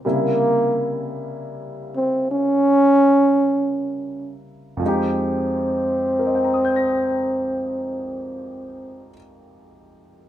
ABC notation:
X:1
M:4/4
L:1/8
Q:"Swing" 1/4=44
K:Fm
V:1 name="Grand piano"
z8 | z2 [Begbe'g'b']6 |]
V:2 name="Grand piano" clef=bass
[C,D,G,B,=E]8 | [F,,F,A,EG]8 |]
V:3 name="Trombone"
B,2 z C D3 z | C8 |]